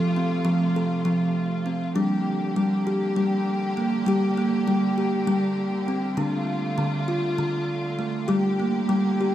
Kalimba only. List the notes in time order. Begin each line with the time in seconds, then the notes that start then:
Already playing: F3 A4
0.16 C4
0.45 F3
0.76 A4
1.05 F3
1.66 C4
1.96 G3 D4
2.56 G3
2.87 G4
3.16 G3
3.77 A#3
4.06 G3 G4
4.37 A#3
4.68 G3
4.98 G4
5.27 G3
5.88 C4
6.17 D3 D4
6.78 D3
7.08 F4
7.38 D3
7.99 A3
8.28 G3 G4
8.60 A#3
8.89 G3
9.21 G4